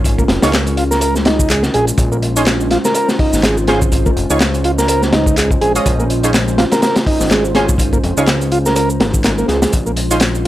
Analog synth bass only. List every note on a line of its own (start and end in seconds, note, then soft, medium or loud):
0.00 0.24 G#1 loud
0.29 0.39 F1 loud
0.43 1.69 C#2 medium
1.74 1.92 A#1 medium
1.98 2.78 A#1 loud
3.33 4.11 G#1 loud
4.17 4.26 F1 loud
4.30 5.57 C#2 medium
5.62 5.80 A#1 medium
5.86 6.65 A#1 loud
7.21 7.99 G#1 loud
8.04 8.13 F1 loud
8.17 9.00 C#2 medium
9.00 9.44 G#1 loud
9.49 9.67 C#2 medium
9.73 10.47 A#1 loud